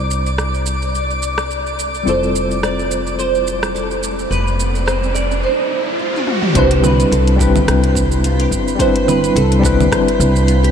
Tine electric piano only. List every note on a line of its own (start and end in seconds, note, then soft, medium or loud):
0.00 2.02 G3 medium
0.00 2.03 C4 medium
0.00 2.04 D4 medium
0.00 2.04 E4 medium
0.00 2.05 D5 medium
2.03 5.42 G3 medium
2.03 5.43 C4 medium
2.03 5.43 E4 medium
2.08 5.44 F4 medium
2.08 5.45 A4 medium
6.52 7.35 G3 medium
6.52 7.36 C4 medium
6.52 7.37 D4 medium
6.57 7.37 E4 medium
6.57 7.38 B4 loud
7.36 8.74 G3 medium
7.36 8.76 C4 medium
7.36 8.77 D4 medium
7.41 8.77 E4 medium
7.41 8.78 B4 medium
8.76 9.58 G3 medium
8.76 9.60 C4 medium
8.76 9.61 D4 medium
8.81 9.61 E4 medium
8.81 9.62 B4 loud
9.59 10.71 G3 medium
9.59 10.71 C4 medium
9.59 10.71 D4 medium
9.64 10.71 E4 medium
9.64 10.71 B4 loud